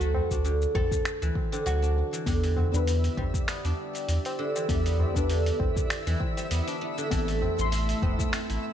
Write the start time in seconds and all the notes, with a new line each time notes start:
Already playing: D2 F#3 C4 E4 F#4
0.01 A3, cabasa
0.14 tabla na, tabla ge
0.31 D2 D4, kick, tabla tin, cabasa
0.44 D3, cabasa
0.62 cabasa
0.75 A1 A4, kick, tabla na, tabla ge
0.91 kick, cabasa
1.05 finger snap, cabasa
1.22 D2 E3, cabasa
1.35 kick, tabla na
1.52 D3, tabla na, cabasa
1.66 D2 F#3 F#4, cabasa
1.82 D4, tabla tin, cabasa
1.96 tabla tin
2.13 E3, cabasa
2.26 E2 D3 B3 D4 E4 G4 E5, kick, open hi-hat, cabasa
2.43 E3, open hi-hat, cabasa
2.51 D5
2.56 tabla na, tabla ge
2.72 E2 B3 D4 B4, tabla tin, cabasa
2.87 open hi-hat, cabasa
3.04 open hi-hat, cabasa
3.08 E5
3.17 B1 G3, kick, tabla na, tabla ge
3.34 kick, cabasa
3.48 B3, finger snap, open hi-hat, cabasa
3.65 E2 D4, open hi-hat, cabasa
3.95 open hi-hat, cabasa
4.08 E2, open hi-hat, cabasa
4.25 open hi-hat, tabla na, cabasa
4.39 D3
4.56 E3, tabla na, cabasa
4.68 E2 G3 B3 D4 G4, kick, open hi-hat, cabasa
4.86 B3, open hi-hat, cabasa
5.00 tabla na, tabla ge
5.14 E2 B3 D4 B4, kick, cabasa
5.29 D3, open hi-hat, cabasa
5.46 open hi-hat, cabasa
5.60 B1, kick, tabla na, tabla ge
5.76 kick, cabasa
5.90 finger snap, open hi-hat, cabasa
6.07 E2 E3, open hi-hat, cabasa
6.20 kick, tabla na
6.37 G3, open hi-hat, tabla na, cabasa
6.51 E2 B3, open hi-hat, cabasa
6.67 D4, open hi-hat, tabla tin, cabasa
6.81 B3, tabla tin
6.98 D3, cabasa
7.10 A1 E3 A3 B3 C4 A4, kick, open hi-hat, cabasa
7.28 A3 A4, open hi-hat, cabasa
7.42 tabla na, tabla ge
7.58 A1 C6, tabla tin, cabasa
7.72 open hi-hat, cabasa
7.89 open hi-hat, cabasa
8.02 E1 B3, kick, tabla na, tabla ge
8.19 kick, cabasa
8.33 C4, finger snap, open hi-hat, cabasa
8.50 A1 E4, open hi-hat, cabasa